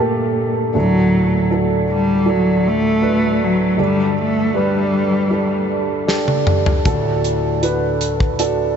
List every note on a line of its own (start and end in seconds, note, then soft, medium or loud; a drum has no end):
0.00 0.71 G2 soft
0.00 0.77 A#2 soft
0.00 0.71 D3 soft
0.00 0.77 A3 soft
0.00 0.71 A#3 medium
0.00 0.77 G4 medium
0.00 0.75 A4 medium
0.74 3.74 D2 soft
0.74 3.74 A2 medium
0.74 1.47 F#3 medium
0.74 1.47 D4 medium
0.74 1.47 F#4 medium
0.74 1.47 A4 medium
1.50 2.23 D4 medium
1.50 2.23 F#4 soft
1.50 2.23 A4 medium
1.90 2.31 G3 medium
2.25 2.69 F#3 medium
2.25 2.98 D4 medium
2.25 2.98 F#4 soft
2.25 2.98 A4 medium
2.67 3.46 A3 medium
3.02 3.74 D4 soft
3.02 3.75 F#4 medium
3.02 3.75 B4 medium
3.44 3.80 F#3 medium
3.77 6.81 G2 soft
3.77 6.81 D3 soft
3.77 4.50 D4 medium
3.77 4.50 G4 soft
3.77 4.50 A4 medium
3.82 4.16 G3 medium
4.21 4.59 A3 medium
4.54 5.70 G3 medium
4.54 5.27 D4 medium
4.54 5.27 G4 soft
4.54 5.27 B4 medium
5.30 6.03 D4 medium
5.30 6.04 G4 soft
5.30 6.04 A4 medium
6.07 6.81 D4 medium
6.07 6.81 G4 medium
6.07 6.81 A4 medium
6.07 snare soft
6.28 high tom soft
6.47 mid tom medium
6.66 floor tom medium
6.85 8.76 D2 medium
6.85 8.76 A2 medium
6.85 7.59 D4 medium
6.85 7.59 F#4 medium
6.85 7.59 A4 medium
6.85 kick medium
6.85 closed hi-hat medium
7.24 closed hi-hat medium
7.62 8.36 D4 medium
7.62 8.36 F#4 medium
7.62 8.36 B4 medium
7.62 closed hi-hat medium
8.01 closed hi-hat medium
8.20 kick medium
8.39 8.76 D4 medium
8.39 8.76 F#4 medium
8.39 8.76 A4 medium
8.39 closed hi-hat medium